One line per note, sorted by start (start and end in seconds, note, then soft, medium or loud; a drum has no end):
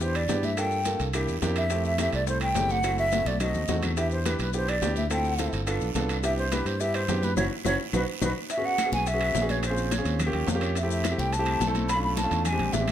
0.00 0.26 E2 medium
0.00 0.21 B3 medium
0.00 0.21 D4 medium
0.00 0.21 E4 medium
0.00 0.21 G4 medium
0.00 0.18 C5 medium
0.00 high bongo medium
0.00 high conga soft
0.00 long guiro medium
0.00 maracas medium
0.15 0.46 D5 medium
0.15 high bongo soft
0.15 high conga soft
0.15 high timbale medium
0.15 claves medium
0.15 maracas soft
0.28 0.94 G2 medium
0.28 0.49 B3 medium
0.28 0.49 D4 medium
0.28 0.49 E4 medium
0.28 0.49 G4 medium
0.28 high bongo soft
0.28 low bongo medium
0.28 high conga soft
0.28 high timbale medium
0.28 low timbale medium
0.28 short guiro medium
0.28 maracas medium
0.43 0.60 E5 medium
0.43 high bongo soft
0.43 high conga medium
0.43 short guiro medium
0.43 maracas soft
0.57 0.77 A#3 medium
0.57 0.77 D4 medium
0.57 0.77 F4 medium
0.57 0.77 A4 medium
0.57 1.01 G5 medium
0.57 high bongo medium
0.57 high timbale medium
0.57 long guiro medium
0.57 claves medium
0.57 maracas medium
0.71 high conga soft
0.71 maracas soft
0.85 1.06 A#3 medium
0.85 1.06 D4 medium
0.85 1.06 F4 medium
0.85 1.06 A4 medium
0.85 high bongo medium
0.85 high conga medium
0.85 high timbale medium
0.85 low timbale medium
0.85 short guiro medium
0.85 maracas medium
1.00 1.26 C2 medium
1.00 high bongo soft
1.00 high conga soft
1.00 high timbale medium
1.00 short guiro medium
1.00 maracas soft
1.13 1.34 A#3 medium
1.13 1.34 D4 medium
1.13 1.34 E4 medium
1.13 1.34 G4 medium
1.13 high bongo medium
1.13 high conga soft
1.13 high timbale medium
1.13 long guiro medium
1.13 claves medium
1.13 maracas medium
1.28 1.41 E2 medium
1.28 high bongo soft
1.28 high conga soft
1.28 maracas soft
1.42 2.08 F2 medium
1.42 1.62 A#3 medium
1.42 1.62 D4 medium
1.42 1.62 E4 medium
1.42 1.62 G4 medium
1.42 high bongo soft
1.42 low bongo medium
1.42 high timbale medium
1.42 low timbale medium
1.42 short guiro medium
1.42 maracas medium
1.56 1.84 E5 medium
1.56 high bongo soft
1.56 high conga soft
1.56 high timbale medium
1.56 short guiro medium
1.56 claves medium
1.56 maracas soft
1.70 1.91 A3 medium
1.70 1.90 C4 medium
1.70 1.91 E4 medium
1.70 1.91 G4 medium
1.70 high bongo medium
1.70 high conga soft
1.70 high timbale medium
1.70 long guiro medium
1.70 maracas medium
1.85 1.99 E5 loud
1.85 high conga soft
1.85 maracas soft
1.98 2.19 A3 medium
1.98 2.19 C4 medium
1.98 2.19 E4 medium
1.98 2.19 G4 medium
1.98 2.13 E5 medium
1.98 high bongo medium
1.98 high conga medium
1.98 high timbale medium
1.98 low timbale medium
1.98 short guiro medium
1.98 claves medium
1.98 maracas medium
2.13 2.52 C2 medium
2.13 2.27 D5 loud
2.13 high bongo soft
2.13 high conga soft
2.13 high timbale medium
2.13 short guiro medium
2.13 maracas soft
2.27 2.47 A3 medium
2.27 2.47 C4 medium
2.27 2.47 E4 medium
2.27 2.47 A4 medium
2.27 2.41 C5 medium
2.27 high bongo medium
2.27 high conga soft
2.27 long guiro medium
2.27 maracas medium
2.41 2.73 G5 loud
2.41 high bongo soft
2.41 high timbale medium
2.41 claves medium
2.41 maracas soft
2.55 3.20 F#1 medium
2.55 2.75 A3 medium
2.55 2.75 C4 medium
2.55 2.75 E4 medium
2.55 2.75 G4 medium
2.55 high bongo soft
2.55 low bongo medium
2.55 high timbale medium
2.55 low timbale medium
2.55 short guiro medium
2.55 maracas medium
2.69 2.98 F#5 loud
2.69 high bongo soft
2.69 high conga medium
2.69 short guiro medium
2.69 maracas soft
2.83 3.04 A3 medium
2.83 3.04 C4 medium
2.83 3.04 E4 medium
2.83 3.04 F#4 medium
2.83 high bongo medium
2.83 high timbale medium
2.83 long guiro medium
2.83 claves medium
2.83 maracas medium
2.98 3.29 E5 loud
2.98 high conga soft
2.98 maracas soft
3.12 3.32 A3 medium
3.12 3.32 C4 medium
3.12 3.32 E4 medium
3.12 3.32 F#4 medium
3.12 high bongo medium
3.12 high conga medium
3.12 high timbale medium
3.12 low timbale medium
3.12 short guiro medium
3.12 maracas medium
3.25 3.52 B1 medium
3.25 3.41 D5 medium
3.25 high bongo soft
3.25 high conga medium
3.25 high timbale medium
3.25 short guiro medium
3.25 maracas soft
3.40 3.60 A3 medium
3.40 3.60 C4 medium
3.40 3.60 D#4 medium
3.40 3.60 F#4 medium
3.40 3.81 D#5 medium
3.40 high bongo medium
3.40 low conga medium
3.40 high timbale medium
3.40 long guiro medium
3.40 claves medium
3.40 maracas medium
3.54 3.68 D#2 medium
3.54 high bongo soft
3.54 low conga medium
3.54 maracas soft
3.68 4.34 E2 medium
3.68 3.89 A3 medium
3.68 3.89 C4 medium
3.68 3.89 D#4 medium
3.68 3.89 F#4 medium
3.68 high bongo soft
3.68 low bongo medium
3.68 low conga medium
3.68 high timbale medium
3.68 low timbale medium
3.68 short guiro medium
3.68 maracas medium
3.83 high bongo soft
3.83 low conga medium
3.83 high timbale medium
3.83 short guiro medium
3.83 claves medium
3.83 maracas soft
3.97 4.17 B3 medium
3.97 4.17 D4 medium
3.97 4.17 E4 medium
3.97 4.17 G4 medium
3.97 4.11 E5 medium
3.97 high bongo medium
3.97 high timbale medium
3.97 long guiro medium
3.97 maracas medium
4.11 4.28 C5 medium
4.11 high conga soft
4.11 maracas soft
4.25 4.45 B3 medium
4.25 4.45 D4 medium
4.25 4.45 E4 medium
4.25 4.45 G4 medium
4.25 4.40 B4 medium
4.25 high bongo medium
4.25 high conga medium
4.25 high timbale medium
4.25 low timbale medium
4.25 short guiro medium
4.25 claves medium
4.25 maracas medium
4.39 4.79 B1 medium
4.39 4.54 B4 medium
4.39 high bongo soft
4.39 high conga soft
4.39 high timbale medium
4.39 short guiro medium
4.39 maracas soft
4.53 4.74 B3 medium
4.53 4.74 D4 medium
4.53 4.74 E4 medium
4.53 4.74 G4 medium
4.53 4.70 C5 medium
4.53 high bongo medium
4.53 high conga soft
4.53 long guiro medium
4.53 maracas medium
4.68 4.96 D5 medium
4.68 high bongo soft
4.68 high conga soft
4.68 high timbale medium
4.68 claves medium
4.68 maracas soft
4.82 5.47 D2 medium
4.82 5.02 B3 medium
4.82 5.02 D4 medium
4.82 5.02 E4 medium
4.82 5.02 G4 medium
4.82 high bongo soft
4.82 low bongo medium
4.82 high timbale medium
4.82 low timbale medium
4.82 short guiro medium
4.82 maracas medium
4.96 5.10 E5 medium
4.96 high bongo soft
4.96 high conga medium
4.96 short guiro medium
4.96 maracas soft
5.10 5.30 C4 medium
5.10 5.30 E4 medium
5.10 5.30 F4 medium
5.10 5.31 A4 medium
5.10 5.51 G5 medium
5.10 high bongo medium
5.10 high conga soft
5.10 high timbale medium
5.10 long guiro medium
5.10 claves medium
5.10 maracas medium
5.24 high conga soft
5.24 maracas soft
5.38 5.59 C4 medium
5.38 5.59 E4 medium
5.38 5.59 F4 medium
5.38 5.59 A4 medium
5.38 high bongo medium
5.38 high conga medium
5.38 high timbale medium
5.38 low timbale medium
5.38 short guiro medium
5.38 maracas medium
5.53 5.79 G1 medium
5.53 high bongo soft
5.53 high conga soft
5.53 high timbale medium
5.53 short guiro medium
5.53 maracas soft
5.67 5.87 B3 medium
5.67 5.87 D4 medium
5.67 5.87 F4 medium
5.67 5.87 A4 medium
5.67 high bongo medium
5.67 high conga soft
5.67 high timbale medium
5.67 long guiro medium
5.67 claves medium
5.67 maracas medium
5.81 5.94 B1 medium
5.81 high bongo soft
5.81 high conga soft
5.81 maracas soft
5.95 6.61 C2 medium
5.95 6.15 B3 medium
5.95 6.15 D4 medium
5.95 6.15 F4 medium
5.95 6.15 A4 medium
5.95 high bongo soft
5.95 low bongo medium
5.95 high conga soft
5.95 high timbale medium
5.95 low timbale medium
5.95 short guiro medium
5.95 maracas medium
6.09 high bongo soft
6.09 high conga soft
6.09 high timbale medium
6.09 short guiro medium
6.09 claves medium
6.09 maracas soft
6.23 6.43 B3 medium
6.23 6.43 D4 medium
6.23 6.43 E4 medium
6.23 6.43 G4 medium
6.23 6.37 E5 loud
6.23 high bongo medium
6.23 high conga soft
6.23 high timbale medium
6.23 long guiro medium
6.23 maracas medium
6.38 6.54 C5 medium
6.38 high conga soft
6.38 maracas soft
6.52 6.72 B3 medium
6.52 6.72 D4 medium
6.52 6.72 E4 medium
6.52 6.72 G4 medium
6.52 6.68 B4 medium
6.52 high bongo medium
6.52 high conga medium
6.52 high timbale medium
6.52 low timbale medium
6.52 short guiro medium
6.52 claves medium
6.52 maracas medium
6.65 7.05 G2 medium
6.65 6.82 C5 medium
6.65 high bongo soft
6.65 high conga soft
6.65 high timbale medium
6.65 short guiro medium
6.65 maracas soft
6.80 7.00 B3 medium
6.80 7.00 D4 medium
6.80 7.00 E4 medium
6.80 7.00 G4 medium
6.80 6.97 E5 loud
6.80 high bongo medium
6.80 long guiro medium
6.80 maracas medium
6.94 7.26 C5 loud
6.94 high bongo soft
6.94 high conga soft
6.94 high timbale loud
6.94 claves medium
6.94 maracas soft
7.08 7.35 F#2 medium
7.08 7.29 B3 medium
7.08 7.29 D4 medium
7.08 7.29 E4 medium
7.08 7.29 G4 medium
7.08 high bongo soft
7.08 low bongo medium
7.08 high timbale medium
7.08 low timbale medium
7.08 short guiro medium
7.08 maracas medium
7.23 7.36 B4 medium
7.23 high bongo soft
7.23 high conga medium
7.23 short guiro medium
7.23 maracas soft
7.37 7.47 F#1 medium
7.37 7.46 C#4 medium
7.37 7.46 E4 loud
7.37 7.46 F#4 medium
7.37 7.46 C#5 medium
7.37 low bongo medium
7.37 low conga medium
7.37 high timbale medium
7.37 long guiro medium
7.37 claves medium
7.37 maracas medium
7.65 7.76 F#1 medium
7.65 7.74 C#4 loud
7.65 7.75 E4 medium
7.65 7.75 F#4 loud
7.65 7.75 C#5 loud
7.65 low bongo loud
7.65 low conga medium
7.65 high timbale medium
7.65 long guiro loud
7.65 claves medium
7.65 maracas medium
7.93 8.04 B1 loud
7.93 8.03 B3 medium
7.93 8.03 D#4 medium
7.93 8.03 F#4 medium
7.93 8.03 B4 medium
7.93 low bongo medium
7.93 low conga medium
7.93 high timbale medium
7.93 long guiro loud
7.93 claves medium
7.93 maracas medium
8.21 8.32 B1 medium
8.21 8.31 B3 medium
8.21 8.31 D#4 medium
8.21 8.31 F#4 medium
8.21 8.31 B4 medium
8.21 low bongo loud
8.21 low conga loud
8.21 high timbale medium
8.21 long guiro medium
8.21 claves medium
8.21 maracas loud
8.50 8.67 E5 loud
8.50 high bongo medium
8.50 high conga soft
8.50 high timbale medium
8.50 long guiro medium
8.50 maracas medium
8.57 8.77 B3 medium
8.57 8.77 C#4 medium
8.57 8.77 F#4 medium
8.57 8.77 G#4 medium
8.65 8.93 F#5 loud
8.65 high conga soft
8.78 high bongo medium
8.78 high conga medium
8.78 high timbale loud
8.78 low timbale medium
8.78 short guiro medium
8.78 claves medium
8.78 maracas medium
8.85 9.05 B3 medium
8.85 9.05 C#4 medium
8.85 9.05 F#4 medium
8.85 9.06 G#4 medium
8.92 9.32 B1 medium
8.92 9.09 G#5 loud
8.92 high conga loud
8.92 short guiro medium
8.92 maracas soft
9.06 9.52 E5 loud
9.06 high bongo medium
9.06 high timbale medium
9.06 long guiro medium
9.06 maracas medium
9.13 9.33 B3 medium
9.13 9.34 C#4 medium
9.13 9.33 F#4 medium
9.13 9.34 G#4 medium
9.21 high timbale medium
9.21 claves medium
9.35 10.00 A#1 medium
9.35 high bongo medium
9.35 low bongo medium
9.35 high conga medium
9.35 low timbale medium
9.35 short guiro medium
9.35 maracas medium
9.41 9.62 B3 medium
9.41 9.61 C#4 medium
9.41 9.62 F#4 medium
9.41 9.62 G#4 medium
9.49 9.64 C#5 medium
9.49 high conga medium
9.49 high timbale medium
9.49 short guiro medium
9.49 maracas soft
9.63 9.94 C5 loud
9.63 high bongo medium
9.63 high conga soft
9.63 high timbale medium
9.63 long guiro medium
9.63 claves medium
9.63 maracas medium
9.70 9.90 C4 medium
9.70 9.90 C#4 medium
9.70 9.90 F4 medium
9.70 9.90 G#4 medium
9.77 high bongo soft
9.77 high conga soft
9.77 maracas medium
9.91 10.20 C#5 medium
9.91 high bongo medium
9.91 high conga medium
9.91 high timbale medium
9.91 low timbale medium
9.91 short guiro medium
9.91 maracas medium
9.98 10.18 C4 medium
9.98 10.18 C#4 medium
9.98 10.18 F4 medium
9.98 10.18 G#4 medium
10.05 10.32 D#2 medium
10.05 high bongo soft
10.05 high conga soft
10.05 high timbale medium
10.05 short guiro medium
10.05 maracas soft
10.20 high bongo medium
10.20 high conga soft
10.20 low conga medium
10.20 high timbale medium
10.20 long guiro medium
10.20 claves medium
10.20 maracas medium
10.26 10.46 A#3 medium
10.26 10.46 C#4 medium
10.26 10.46 F4 medium
10.26 10.46 G4 medium
10.33 10.47 D#2 medium
10.33 10.47 G5 medium
10.33 high bongo soft
10.33 high conga soft
10.33 low conga medium
10.33 high timbale medium
10.47 11.13 F2 medium
10.47 10.61 F5 medium
10.47 high bongo medium
10.47 low bongo medium
10.47 high conga medium
10.47 low timbale medium
10.47 short guiro medium
10.47 maracas medium
10.55 10.75 A#3 medium
10.55 10.75 C#4 medium
10.55 10.75 F4 medium
10.55 10.75 G4 medium
10.61 10.75 C#5 medium
10.61 high timbale medium
10.61 short guiro medium
10.61 claves medium
10.61 maracas soft
10.75 10.90 E5 medium
10.75 high bongo medium
10.75 high conga soft
10.75 high timbale medium
10.75 long guiro medium
10.75 maracas medium
10.83 11.03 A3 medium
10.83 11.03 C4 medium
10.83 11.03 E4 medium
10.83 11.03 G4 medium
10.90 11.20 E5 medium
10.90 high conga soft
10.90 maracas medium
11.04 high bongo medium
11.04 high conga medium
11.04 high timbale loud
11.04 low timbale medium
11.04 short guiro medium
11.04 claves medium
11.04 maracas medium
11.11 11.31 A3 medium
11.11 11.31 C4 medium
11.11 11.31 E4 medium
11.11 11.31 G4 medium
11.18 11.58 C2 medium
11.18 11.34 G5 medium
11.18 high conga loud
11.18 short guiro medium
11.18 maracas soft
11.33 11.75 A5 medium
11.33 high bongo medium
11.33 high conga soft
11.33 high timbale medium
11.33 long guiro medium
11.33 maracas medium
11.39 11.59 A3 medium
11.39 11.59 C4 medium
11.39 11.59 E4 medium
11.39 11.59 G4 medium
11.46 high conga soft
11.46 high timbale medium
11.46 claves medium
11.60 12.26 B1 medium
11.60 high bongo medium
11.60 low bongo medium
11.60 high conga medium
11.60 low timbale medium
11.60 short guiro medium
11.60 maracas medium
11.67 11.87 A3 medium
11.67 11.87 C4 medium
11.67 11.87 E4 medium
11.67 11.87 A4 loud
11.75 high conga medium
11.75 high timbale medium
11.75 short guiro medium
11.75 maracas soft
11.89 12.02 B5 loud
11.89 high bongo medium
11.89 high timbale medium
11.89 long guiro medium
11.89 claves medium
11.89 maracas medium
11.95 12.15 A3 medium
11.95 12.15 C#4 medium
11.95 12.15 D4 medium
11.95 12.16 F4 medium
12.03 12.16 B5 medium
12.03 high bongo soft
12.03 high conga soft
12.17 12.43 A5 medium
12.17 high bongo medium
12.17 high conga medium
12.17 high timbale medium
12.17 low timbale medium
12.17 short guiro medium
12.17 maracas medium
12.23 12.44 A3 medium
12.23 12.44 C#4 medium
12.23 12.44 D4 medium
12.23 12.44 F4 medium
12.31 12.57 E2 medium
12.31 high bongo soft
12.31 high conga soft
12.31 high timbale medium
12.31 short guiro medium
12.31 maracas soft
12.45 12.74 G#5 medium
12.45 high bongo medium
12.45 high conga soft
12.45 low conga medium
12.45 high timbale medium
12.45 long guiro medium
12.45 claves medium
12.45 maracas medium
12.52 12.72 G#3 medium
12.52 12.72 C4 medium
12.52 12.72 D4 medium
12.52 12.72 G4 medium
12.59 12.72 A#1 medium
12.59 high bongo soft
12.59 high conga soft
12.59 low conga medium
12.59 high timbale medium
12.73 12.92 A1 medium
12.73 12.92 E5 medium
12.73 high bongo medium
12.73 low bongo medium
12.73 high conga medium
12.73 low timbale medium
12.73 short guiro medium
12.73 maracas medium
12.80 12.92 G#3 medium
12.80 12.92 C4 medium
12.80 12.92 D4 medium
12.80 12.92 G4 medium
12.87 high conga medium
12.87 high timbale medium
12.87 short guiro medium
12.87 claves medium
12.87 maracas soft